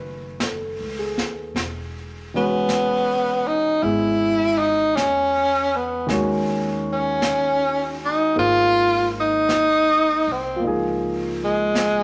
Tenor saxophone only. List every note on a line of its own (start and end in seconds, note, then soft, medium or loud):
2.36 3.48 B3 medium
3.47 3.84 D#4 medium
3.83 4.60 E4 medium
4.58 4.97 D#4 medium
4.96 5.77 C#4 medium
5.76 6.10 B3 medium
6.93 8.00 C#4 medium
8.05 8.36 D#4 medium
8.39 9.12 F4 medium
9.20 10.33 D#4 medium
10.32 10.65 C4 medium
11.44 12.03 G#3 medium